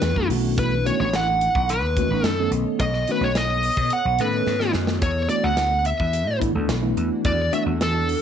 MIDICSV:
0, 0, Header, 1, 6, 480
1, 0, Start_track
1, 0, Tempo, 556070
1, 496, Time_signature, 4, 2, 24, 8
1, 7094, End_track
2, 0, Start_track
2, 0, Title_t, "Lead electric guitar"
2, 0, Program_c, 0, 29
2, 0, Note_on_c, 0, 71, 79
2, 234, Note_off_c, 0, 71, 0
2, 511, Note_on_c, 0, 71, 91
2, 727, Note_off_c, 0, 71, 0
2, 746, Note_on_c, 0, 73, 87
2, 858, Note_off_c, 0, 73, 0
2, 868, Note_on_c, 0, 73, 82
2, 984, Note_off_c, 0, 73, 0
2, 997, Note_on_c, 0, 78, 97
2, 1468, Note_on_c, 0, 71, 73
2, 1480, Note_off_c, 0, 78, 0
2, 1960, Note_off_c, 0, 71, 0
2, 1960, Note_on_c, 0, 69, 73
2, 2147, Note_off_c, 0, 69, 0
2, 2421, Note_on_c, 0, 75, 92
2, 2665, Note_off_c, 0, 75, 0
2, 2688, Note_on_c, 0, 71, 73
2, 2795, Note_on_c, 0, 73, 72
2, 2797, Note_off_c, 0, 71, 0
2, 2912, Note_off_c, 0, 73, 0
2, 2912, Note_on_c, 0, 75, 77
2, 3393, Note_on_c, 0, 78, 95
2, 3398, Note_off_c, 0, 75, 0
2, 3631, Note_off_c, 0, 78, 0
2, 3632, Note_on_c, 0, 71, 75
2, 4071, Note_off_c, 0, 71, 0
2, 4339, Note_on_c, 0, 73, 91
2, 4567, Note_off_c, 0, 73, 0
2, 4571, Note_on_c, 0, 74, 83
2, 4695, Note_on_c, 0, 78, 94
2, 4699, Note_off_c, 0, 74, 0
2, 5029, Note_off_c, 0, 78, 0
2, 5061, Note_on_c, 0, 76, 82
2, 5504, Note_off_c, 0, 76, 0
2, 6263, Note_on_c, 0, 74, 107
2, 6504, Note_off_c, 0, 74, 0
2, 6507, Note_on_c, 0, 76, 98
2, 6570, Note_off_c, 0, 76, 0
2, 6757, Note_on_c, 0, 69, 82
2, 7094, Note_off_c, 0, 69, 0
2, 7094, End_track
3, 0, Start_track
3, 0, Title_t, "Ambient pad"
3, 0, Program_c, 1, 92
3, 0, Note_on_c, 1, 52, 76
3, 0, Note_on_c, 1, 62, 72
3, 0, Note_on_c, 1, 64, 70
3, 0, Note_on_c, 1, 69, 83
3, 224, Note_off_c, 1, 52, 0
3, 225, Note_off_c, 1, 62, 0
3, 238, Note_off_c, 1, 64, 0
3, 259, Note_on_c, 1, 73, 74
3, 262, Note_on_c, 1, 59, 79
3, 266, Note_on_c, 1, 75, 85
3, 4303, Note_off_c, 1, 73, 0
3, 4304, Note_off_c, 1, 59, 0
3, 4306, Note_off_c, 1, 75, 0
3, 4336, Note_on_c, 1, 66, 75
3, 4338, Note_on_c, 1, 52, 80
3, 4340, Note_on_c, 1, 62, 70
3, 7094, Note_off_c, 1, 52, 0
3, 7094, Note_off_c, 1, 62, 0
3, 7094, Note_off_c, 1, 66, 0
3, 7094, Note_off_c, 1, 69, 0
3, 7094, End_track
4, 0, Start_track
4, 0, Title_t, "Tine electric piano"
4, 0, Program_c, 2, 4
4, 140, Note_on_c, 2, 66, 78
4, 141, Note_on_c, 2, 59, 63
4, 142, Note_on_c, 2, 52, 63
4, 143, Note_on_c, 2, 57, 67
4, 144, Note_on_c, 2, 62, 62
4, 249, Note_off_c, 2, 59, 0
4, 251, Note_off_c, 2, 57, 0
4, 253, Note_off_c, 2, 66, 0
4, 258, Note_off_c, 2, 52, 0
4, 259, Note_off_c, 2, 62, 0
4, 259, Note_on_c, 2, 59, 66
4, 262, Note_on_c, 2, 51, 71
4, 262, Note_on_c, 2, 57, 71
4, 263, Note_on_c, 2, 61, 64
4, 264, Note_on_c, 2, 66, 76
4, 643, Note_off_c, 2, 59, 0
4, 644, Note_off_c, 2, 51, 0
4, 644, Note_off_c, 2, 57, 0
4, 645, Note_off_c, 2, 61, 0
4, 645, Note_off_c, 2, 66, 0
4, 731, Note_on_c, 2, 51, 90
4, 734, Note_on_c, 2, 66, 97
4, 736, Note_on_c, 2, 57, 87
4, 737, Note_on_c, 2, 59, 84
4, 737, Note_on_c, 2, 61, 89
4, 902, Note_off_c, 2, 51, 0
4, 904, Note_off_c, 2, 57, 0
4, 904, Note_off_c, 2, 66, 0
4, 905, Note_off_c, 2, 59, 0
4, 905, Note_off_c, 2, 61, 0
4, 984, Note_on_c, 2, 61, 26
4, 1038, Note_off_c, 2, 61, 0
4, 1352, Note_on_c, 2, 61, 26
4, 1354, Note_on_c, 2, 66, 27
4, 1402, Note_off_c, 2, 61, 0
4, 1403, Note_off_c, 2, 66, 0
4, 1709, Note_on_c, 2, 66, 107
4, 1711, Note_on_c, 2, 61, 81
4, 1712, Note_on_c, 2, 57, 83
4, 1714, Note_on_c, 2, 51, 93
4, 1715, Note_on_c, 2, 59, 85
4, 1788, Note_off_c, 2, 61, 0
4, 1788, Note_off_c, 2, 66, 0
4, 1789, Note_off_c, 2, 57, 0
4, 1790, Note_off_c, 2, 51, 0
4, 1790, Note_off_c, 2, 59, 0
4, 1830, Note_on_c, 2, 57, 59
4, 1830, Note_on_c, 2, 59, 67
4, 1832, Note_on_c, 2, 51, 68
4, 1833, Note_on_c, 2, 61, 62
4, 1835, Note_on_c, 2, 63, 73
4, 1990, Note_off_c, 2, 57, 0
4, 1990, Note_off_c, 2, 59, 0
4, 1991, Note_off_c, 2, 51, 0
4, 1992, Note_off_c, 2, 61, 0
4, 1993, Note_off_c, 2, 63, 0
4, 2069, Note_on_c, 2, 51, 83
4, 2072, Note_on_c, 2, 57, 76
4, 2072, Note_on_c, 2, 59, 75
4, 2072, Note_on_c, 2, 61, 75
4, 2072, Note_on_c, 2, 69, 91
4, 2481, Note_off_c, 2, 51, 0
4, 2482, Note_off_c, 2, 57, 0
4, 2482, Note_off_c, 2, 59, 0
4, 2482, Note_off_c, 2, 61, 0
4, 2482, Note_off_c, 2, 69, 0
4, 2663, Note_on_c, 2, 59, 84
4, 2665, Note_on_c, 2, 51, 85
4, 2668, Note_on_c, 2, 57, 85
4, 2668, Note_on_c, 2, 66, 97
4, 2669, Note_on_c, 2, 61, 83
4, 2828, Note_off_c, 2, 59, 0
4, 2829, Note_off_c, 2, 51, 0
4, 2830, Note_off_c, 2, 57, 0
4, 2830, Note_off_c, 2, 66, 0
4, 2831, Note_off_c, 2, 61, 0
4, 3267, Note_on_c, 2, 69, 28
4, 3269, Note_on_c, 2, 61, 26
4, 3319, Note_off_c, 2, 69, 0
4, 3320, Note_off_c, 2, 61, 0
4, 3623, Note_on_c, 2, 51, 89
4, 3626, Note_on_c, 2, 57, 86
4, 3627, Note_on_c, 2, 59, 86
4, 3627, Note_on_c, 2, 69, 99
4, 3629, Note_on_c, 2, 61, 84
4, 3705, Note_off_c, 2, 51, 0
4, 3706, Note_off_c, 2, 57, 0
4, 3707, Note_off_c, 2, 59, 0
4, 3707, Note_off_c, 2, 61, 0
4, 3707, Note_off_c, 2, 69, 0
4, 3740, Note_on_c, 2, 51, 66
4, 3742, Note_on_c, 2, 57, 58
4, 3743, Note_on_c, 2, 69, 71
4, 3744, Note_on_c, 2, 61, 58
4, 3745, Note_on_c, 2, 59, 57
4, 3905, Note_off_c, 2, 51, 0
4, 3906, Note_off_c, 2, 57, 0
4, 3906, Note_off_c, 2, 69, 0
4, 3907, Note_off_c, 2, 59, 0
4, 3907, Note_off_c, 2, 61, 0
4, 3975, Note_on_c, 2, 66, 71
4, 3976, Note_on_c, 2, 57, 62
4, 3977, Note_on_c, 2, 59, 62
4, 3977, Note_on_c, 2, 61, 59
4, 3981, Note_on_c, 2, 51, 62
4, 4334, Note_off_c, 2, 66, 0
4, 4335, Note_off_c, 2, 57, 0
4, 4335, Note_off_c, 2, 59, 0
4, 4335, Note_off_c, 2, 61, 0
4, 4337, Note_off_c, 2, 51, 0
4, 4566, Note_on_c, 2, 66, 92
4, 4568, Note_on_c, 2, 62, 82
4, 4569, Note_on_c, 2, 57, 83
4, 4569, Note_on_c, 2, 59, 83
4, 4570, Note_on_c, 2, 52, 93
4, 4739, Note_off_c, 2, 66, 0
4, 4740, Note_off_c, 2, 62, 0
4, 4741, Note_off_c, 2, 52, 0
4, 4741, Note_off_c, 2, 57, 0
4, 4741, Note_off_c, 2, 59, 0
4, 5171, Note_on_c, 2, 62, 24
4, 5172, Note_on_c, 2, 68, 29
4, 5231, Note_off_c, 2, 62, 0
4, 5231, Note_off_c, 2, 68, 0
4, 5522, Note_on_c, 2, 59, 83
4, 5524, Note_on_c, 2, 64, 102
4, 5525, Note_on_c, 2, 52, 92
4, 5528, Note_on_c, 2, 57, 81
4, 5528, Note_on_c, 2, 62, 83
4, 5613, Note_off_c, 2, 59, 0
4, 5615, Note_off_c, 2, 52, 0
4, 5615, Note_off_c, 2, 64, 0
4, 5616, Note_off_c, 2, 57, 0
4, 5617, Note_off_c, 2, 62, 0
4, 5652, Note_on_c, 2, 52, 83
4, 5653, Note_on_c, 2, 69, 93
4, 5654, Note_on_c, 2, 57, 73
4, 5655, Note_on_c, 2, 62, 71
4, 5660, Note_on_c, 2, 59, 71
4, 5820, Note_off_c, 2, 52, 0
4, 5821, Note_off_c, 2, 69, 0
4, 5822, Note_off_c, 2, 57, 0
4, 5822, Note_off_c, 2, 62, 0
4, 5825, Note_off_c, 2, 59, 0
4, 5888, Note_on_c, 2, 52, 81
4, 5888, Note_on_c, 2, 62, 77
4, 5890, Note_on_c, 2, 57, 78
4, 5890, Note_on_c, 2, 59, 74
4, 5893, Note_on_c, 2, 64, 88
4, 6310, Note_off_c, 2, 52, 0
4, 6310, Note_off_c, 2, 57, 0
4, 6310, Note_off_c, 2, 62, 0
4, 6311, Note_off_c, 2, 59, 0
4, 6312, Note_off_c, 2, 64, 0
4, 6493, Note_on_c, 2, 59, 80
4, 6495, Note_on_c, 2, 57, 77
4, 6497, Note_on_c, 2, 52, 87
4, 6497, Note_on_c, 2, 62, 85
4, 6497, Note_on_c, 2, 66, 105
4, 6662, Note_off_c, 2, 59, 0
4, 6663, Note_off_c, 2, 57, 0
4, 6664, Note_off_c, 2, 52, 0
4, 6664, Note_off_c, 2, 62, 0
4, 6664, Note_off_c, 2, 66, 0
4, 7094, End_track
5, 0, Start_track
5, 0, Title_t, "Slap bass"
5, 0, Program_c, 3, 36
5, 14, Note_on_c, 3, 40, 75
5, 120, Note_off_c, 3, 40, 0
5, 139, Note_on_c, 3, 42, 94
5, 240, Note_off_c, 3, 42, 0
5, 251, Note_on_c, 3, 35, 94
5, 769, Note_off_c, 3, 35, 0
5, 861, Note_on_c, 3, 33, 84
5, 1271, Note_off_c, 3, 33, 0
5, 1338, Note_on_c, 3, 35, 74
5, 1583, Note_off_c, 3, 35, 0
5, 1583, Note_on_c, 3, 39, 87
5, 1786, Note_off_c, 3, 39, 0
5, 1820, Note_on_c, 3, 33, 86
5, 1920, Note_off_c, 3, 33, 0
5, 1927, Note_on_c, 3, 42, 76
5, 2137, Note_off_c, 3, 42, 0
5, 2167, Note_on_c, 3, 35, 81
5, 2275, Note_off_c, 3, 35, 0
5, 2417, Note_on_c, 3, 35, 99
5, 2622, Note_off_c, 3, 35, 0
5, 2768, Note_on_c, 3, 35, 82
5, 3183, Note_off_c, 3, 35, 0
5, 3253, Note_on_c, 3, 47, 73
5, 3356, Note_off_c, 3, 47, 0
5, 3497, Note_on_c, 3, 35, 87
5, 3599, Note_off_c, 3, 35, 0
5, 3618, Note_on_c, 3, 45, 83
5, 3833, Note_off_c, 3, 45, 0
5, 3856, Note_on_c, 3, 44, 74
5, 4072, Note_off_c, 3, 44, 0
5, 4094, Note_on_c, 3, 42, 79
5, 4311, Note_off_c, 3, 42, 0
5, 4333, Note_on_c, 3, 40, 99
5, 4540, Note_off_c, 3, 40, 0
5, 4693, Note_on_c, 3, 38, 83
5, 5106, Note_off_c, 3, 38, 0
5, 5176, Note_on_c, 3, 40, 78
5, 5418, Note_off_c, 3, 40, 0
5, 5418, Note_on_c, 3, 45, 79
5, 5623, Note_off_c, 3, 45, 0
5, 5655, Note_on_c, 3, 38, 79
5, 5757, Note_off_c, 3, 38, 0
5, 5767, Note_on_c, 3, 35, 81
5, 5976, Note_off_c, 3, 35, 0
5, 6017, Note_on_c, 3, 40, 84
5, 6120, Note_off_c, 3, 40, 0
5, 6255, Note_on_c, 3, 40, 101
5, 6461, Note_off_c, 3, 40, 0
5, 6613, Note_on_c, 3, 40, 79
5, 7025, Note_off_c, 3, 40, 0
5, 7094, End_track
6, 0, Start_track
6, 0, Title_t, "Drums"
6, 15, Note_on_c, 9, 38, 101
6, 15, Note_on_c, 9, 42, 81
6, 102, Note_off_c, 9, 38, 0
6, 102, Note_off_c, 9, 42, 0
6, 140, Note_on_c, 9, 36, 68
6, 226, Note_off_c, 9, 36, 0
6, 260, Note_on_c, 9, 46, 82
6, 346, Note_off_c, 9, 46, 0
6, 499, Note_on_c, 9, 36, 110
6, 501, Note_on_c, 9, 42, 80
6, 585, Note_off_c, 9, 36, 0
6, 588, Note_off_c, 9, 42, 0
6, 745, Note_on_c, 9, 42, 54
6, 832, Note_off_c, 9, 42, 0
6, 980, Note_on_c, 9, 38, 100
6, 980, Note_on_c, 9, 42, 76
6, 1066, Note_off_c, 9, 38, 0
6, 1066, Note_off_c, 9, 42, 0
6, 1220, Note_on_c, 9, 42, 61
6, 1306, Note_off_c, 9, 42, 0
6, 1339, Note_on_c, 9, 36, 74
6, 1425, Note_off_c, 9, 36, 0
6, 1460, Note_on_c, 9, 42, 84
6, 1547, Note_off_c, 9, 42, 0
6, 1697, Note_on_c, 9, 36, 78
6, 1699, Note_on_c, 9, 42, 60
6, 1784, Note_off_c, 9, 36, 0
6, 1786, Note_off_c, 9, 42, 0
6, 1934, Note_on_c, 9, 38, 103
6, 1934, Note_on_c, 9, 42, 73
6, 2020, Note_off_c, 9, 38, 0
6, 2020, Note_off_c, 9, 42, 0
6, 2173, Note_on_c, 9, 42, 58
6, 2259, Note_off_c, 9, 42, 0
6, 2414, Note_on_c, 9, 36, 106
6, 2414, Note_on_c, 9, 42, 73
6, 2500, Note_off_c, 9, 42, 0
6, 2501, Note_off_c, 9, 36, 0
6, 2535, Note_on_c, 9, 38, 32
6, 2621, Note_off_c, 9, 38, 0
6, 2654, Note_on_c, 9, 42, 53
6, 2740, Note_off_c, 9, 42, 0
6, 2894, Note_on_c, 9, 38, 101
6, 2894, Note_on_c, 9, 42, 73
6, 2980, Note_off_c, 9, 38, 0
6, 2980, Note_off_c, 9, 42, 0
6, 3131, Note_on_c, 9, 46, 66
6, 3218, Note_off_c, 9, 46, 0
6, 3255, Note_on_c, 9, 36, 73
6, 3342, Note_off_c, 9, 36, 0
6, 3369, Note_on_c, 9, 42, 91
6, 3456, Note_off_c, 9, 42, 0
6, 3613, Note_on_c, 9, 42, 62
6, 3700, Note_off_c, 9, 42, 0
6, 3855, Note_on_c, 9, 38, 57
6, 3941, Note_off_c, 9, 38, 0
6, 3971, Note_on_c, 9, 38, 50
6, 4057, Note_off_c, 9, 38, 0
6, 4086, Note_on_c, 9, 38, 85
6, 4172, Note_off_c, 9, 38, 0
6, 4207, Note_on_c, 9, 38, 88
6, 4293, Note_off_c, 9, 38, 0
6, 4331, Note_on_c, 9, 42, 82
6, 4333, Note_on_c, 9, 36, 104
6, 4417, Note_off_c, 9, 42, 0
6, 4420, Note_off_c, 9, 36, 0
6, 4569, Note_on_c, 9, 42, 61
6, 4655, Note_off_c, 9, 42, 0
6, 4808, Note_on_c, 9, 38, 106
6, 4808, Note_on_c, 9, 42, 82
6, 4894, Note_off_c, 9, 38, 0
6, 4894, Note_off_c, 9, 42, 0
6, 5050, Note_on_c, 9, 42, 61
6, 5136, Note_off_c, 9, 42, 0
6, 5177, Note_on_c, 9, 36, 70
6, 5263, Note_off_c, 9, 36, 0
6, 5294, Note_on_c, 9, 42, 86
6, 5380, Note_off_c, 9, 42, 0
6, 5538, Note_on_c, 9, 36, 78
6, 5542, Note_on_c, 9, 42, 59
6, 5624, Note_off_c, 9, 36, 0
6, 5628, Note_off_c, 9, 42, 0
6, 5775, Note_on_c, 9, 38, 106
6, 5775, Note_on_c, 9, 42, 77
6, 5861, Note_off_c, 9, 38, 0
6, 5861, Note_off_c, 9, 42, 0
6, 6018, Note_on_c, 9, 42, 55
6, 6104, Note_off_c, 9, 42, 0
6, 6255, Note_on_c, 9, 42, 78
6, 6257, Note_on_c, 9, 36, 104
6, 6341, Note_off_c, 9, 42, 0
6, 6343, Note_off_c, 9, 36, 0
6, 6499, Note_on_c, 9, 42, 54
6, 6585, Note_off_c, 9, 42, 0
6, 6741, Note_on_c, 9, 38, 105
6, 6741, Note_on_c, 9, 42, 74
6, 6827, Note_off_c, 9, 38, 0
6, 6827, Note_off_c, 9, 42, 0
6, 6983, Note_on_c, 9, 46, 74
6, 7070, Note_off_c, 9, 46, 0
6, 7094, End_track
0, 0, End_of_file